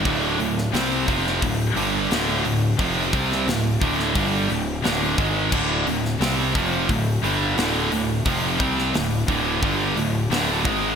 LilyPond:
<<
  \new Staff \with { instrumentName = "Distorted electric guitar" } { \clef bass \time 4/4 \key d \phrygian \tempo 4 = 88 <d, a, d>8 <d, a,>8 <c g c'>8 <f, c f>8 <d, a,>8 <g, d g>8 <d, a, d>8 <d, a,>8 | <f, c f>8 <c g c'>8 <d, a,>8 <d, a, d>8 <g, d g>8 <d, a,>8 <d, a, d>8 <gis, ees gis>8 | <d, a, d>8 <d, a,>8 <c g c'>8 <f, c f>8 <d, a,>8 <g, d g>8 <d, a, d>8 <d, a,>8 | <f, c f>8 <c g c'>8 <d, a,>8 <d, a, d>8 <g, d g>8 <d, a,>8 <d, a, d>8 <gis, ees gis>8 | }
  \new Staff \with { instrumentName = "Distorted electric guitar" } { \clef bass \time 4/4 \key d \phrygian <d, a, d>8 <d, a,>8 <c g c'>8 <f, c f>8 <d, a,>8 <g, d g>8 <d, a, d>8 <d, a,>8 | <f, c f>8 <c g c'>8 <d, a,>8 <d, a, d>8 <g, d g>8 <d, a,>8 <d, a, d>8 <gis, ees gis>8 | <d, a, d>8 <d, a,>8 <c g c'>8 <f, c f>8 <d, a,>8 <g, d g>8 <d, a, d>8 <d, a,>8 | <f, c f>8 <c g c'>8 <d, a,>8 <d, a, d>8 <g, d g>8 <d, a,>8 <d, a, d>8 <gis, ees gis>8 | }
  \new Staff \with { instrumentName = "Distorted electric guitar" } { \clef bass \time 4/4 \key d \phrygian <d, a, d>8 <d, a,>8 <c g c'>8 <f, c f>8 <d, a,>8 <g, d g>8 <d, a, d>8 <d, a,>8 | <f, c f>8 <c g c'>8 <d, a,>8 <d, a, d>8 <g, d g>8 <d, a,>8 <d, a, d>8 <gis, ees gis>8 | <d, a, d>8 <d, a,>8 <c g c'>8 <f, c f>8 <d, a,>8 <g, d g>8 <d, a, d>8 <d, a,>8 | <f, c f>8 <c g c'>8 <d, a,>8 <d, a, d>8 <g, d g>8 <d, a,>8 <d, a, d>8 <gis, ees gis>8 | }
  \new Staff \with { instrumentName = "Picked electric bass" } { \clef bass \time 4/4 \key d \phrygian d,,8 d,,8 c,8 f,,8 d,,8 g,,8 d,,8 d,,8 | f,,8 c,8 d,,8 d,,8 g,,8 d,,8 d,,8 gis,,8 | d,,8 d,,8 c,8 f,,8 d,,8 g,,8 d,,8 d,,8 | f,,8 c,8 d,,8 d,,8 g,,8 d,,8 d,,8 gis,,8 | }
  \new DrumStaff \with { instrumentName = "Drums" } \drummode { \time 4/4 <hho bd>8 hho16 sn16 <hho sn>8 <hho bd>16 sn16 <hho bd>8 hho8 <hho sn>8 hho8 | <hho bd>8 <hho bd>16 sn16 <hho sn>8 <hho bd>16 sn16 <hho bd>8 hho8 <hho sn>8 <hho bd>8 | <cymc bd>8 hho16 sn16 <hho sn>8 <hho bd>8 <hho bd>8 hho8 <hho sn>8 hho8 | <hho bd>8 <hho bd>16 sn16 <hho sn>8 <hho bd>8 <hho bd>8 hho8 <hho sn>8 <hho bd>8 | }
>>